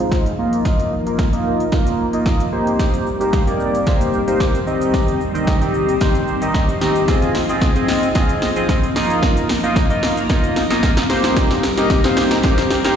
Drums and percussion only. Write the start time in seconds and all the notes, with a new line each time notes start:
0.12 kick, snare, closed hi-hat
0.26 closed hi-hat
0.53 closed hi-hat
0.65 kick, snare, closed hi-hat
0.79 closed hi-hat
1.07 closed hi-hat
1.19 kick, snare, closed hi-hat
1.33 closed hi-hat
1.60 closed hi-hat
1.72 kick, snare, closed hi-hat
1.87 closed hi-hat
2.13 closed hi-hat
2.26 kick, snare, closed hi-hat
2.40 closed hi-hat
2.67 closed hi-hat
2.79 kick, snare, closed hi-hat, shaker
2.94 closed hi-hat, shaker
3.07 shaker
3.21 closed hi-hat, shaker
3.33 kick, snare, closed hi-hat, shaker
3.47 closed hi-hat, shaker
3.60 shaker
3.75 closed hi-hat, shaker
3.87 kick, snare, closed hi-hat, shaker
4.01 closed hi-hat, shaker
4.14 shaker
4.28 closed hi-hat, shaker
4.40 kick, snare, closed hi-hat, shaker
4.55 closed hi-hat, shaker
4.67 shaker
4.81 closed hi-hat, shaker
4.94 kick, snare, closed hi-hat, shaker
5.08 closed hi-hat, shaker
5.21 shaker
5.35 closed hi-hat, shaker
5.47 kick, snare, closed hi-hat, shaker
5.62 closed hi-hat, shaker
5.74 shaker
5.89 closed hi-hat, shaker
6.01 kick, snare, closed hi-hat, shaker
6.15 closed hi-hat, shaker
6.28 shaker
6.42 closed hi-hat, shaker
6.54 kick, snare, closed hi-hat, shaker
6.69 closed hi-hat, shaker
6.81 snare, shaker
6.96 closed hi-hat, shaker
7.08 kick, snare, closed hi-hat, shaker
7.22 closed hi-hat, shaker
7.35 snare, open hi-hat, shaker
7.49 closed hi-hat, shaker
7.61 kick, snare, closed hi-hat, shaker
7.76 closed hi-hat, shaker
7.88 snare, open hi-hat, shaker
8.03 closed hi-hat, shaker
8.15 kick, snare, closed hi-hat, shaker
8.29 closed hi-hat, shaker
8.42 snare, open hi-hat, shaker
8.56 closed hi-hat, shaker
8.69 kick, snare, closed hi-hat, shaker
8.83 closed hi-hat, shaker
8.96 snare, open hi-hat, shaker
9.10 closed hi-hat, shaker
9.22 kick, snare, closed hi-hat, shaker
9.37 closed hi-hat, shaker
9.49 snare, open hi-hat, shaker
9.64 closed hi-hat, shaker
9.76 kick, snare, closed hi-hat, shaker
9.90 closed hi-hat, shaker
10.03 snare, open hi-hat, shaker
10.17 closed hi-hat, shaker
10.29 kick, snare, closed hi-hat, shaker
10.44 closed hi-hat, shaker
10.56 snare, open hi-hat, shaker
10.70 snare, closed hi-hat, shaker
10.83 kick, snare, closed hi-hat, shaker
10.97 snare, closed hi-hat, shaker
11.10 snare, open hi-hat, shaker
11.24 snare, closed hi-hat, shaker
11.37 kick, snare, closed hi-hat, shaker
11.51 snare, closed hi-hat, shaker
11.63 snare, open hi-hat, shaker
11.78 snare, closed hi-hat, shaker
11.90 kick, snare, closed hi-hat, shaker
12.04 snare, closed hi-hat, shaker
12.17 snare, open hi-hat, shaker
12.31 snare, closed hi-hat, shaker
12.43 kick, snare, closed hi-hat, shaker
12.58 snare, closed hi-hat, shaker
12.70 snare, open hi-hat, shaker
12.84 snare, closed hi-hat, shaker